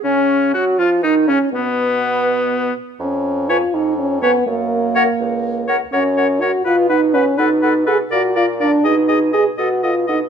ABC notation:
X:1
M:6/8
L:1/16
Q:3/8=82
K:F#
V:1 name="Flute"
C4 F2 E2 D2 C2 | B8- B2 z2 | z4 g z4 z g z | z4 f z4 z f z |
[K:Cblyd] g2 g2 g2 ^f2 f2 f2 | ^f2 f2 f2 =f2 f2 f2 | a2 a2 a2 ^f2 f2 f2 |]
V:2 name="Oboe"
C4 F2 E2 D2 C2 | B,8- B,2 z2 | z4 c z4 z c z | z4 c z4 z c z |
[K:Cblyd] d2 d2 d2 =B2 B2 B2 | =B2 B2 B2 =d2 d2 d2 | e2 e2 e2 ^d2 d2 d2 |]
V:3 name="Clarinet"
C4 F2 E2 D2 C2 | B,8- B,2 z2 | z4 B z4 z B z | z4 A z4 z A z |
[K:Cblyd] B2 B2 B2 =B2 B2 B2 | =A2 A2 A2 B2 B2 B2 | A2 A2 A2 =A2 A2 A2 |]
V:4 name="French horn"
C4 F2 E2 D2 C2 | B,8- B,2 z2 | C4 E2 D2 C2 B,2 | A,8- A,2 z2 |
[K:Cblyd] D4 G2 F2 E2 D2 | ^D4 A2 G2 F2 =D2 | E4 A2 ^F2 =F2 ^D2 |]
V:5 name="Bassoon" clef=bass
C,4 F,2 E,2 D,2 C,2 | B,,8- B,,2 z2 | E,,6 E,,6 | F,,6 C,,6 |
[K:Cblyd] G,,6 =B,,6 | =B,,6 _B,,6 | C,6 =B,,6 |]